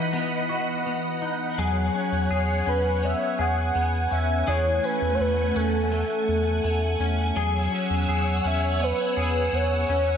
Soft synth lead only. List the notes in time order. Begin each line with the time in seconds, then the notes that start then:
Already playing: D#5
2.68 B4
3.04 E5
3.40 F#5
4.12 E5
4.48 C#5
4.85 B4
5.15 C#5
5.21 B4
5.56 A4
5.93 A4
8.47 E5
8.83 B4
9.55 C#5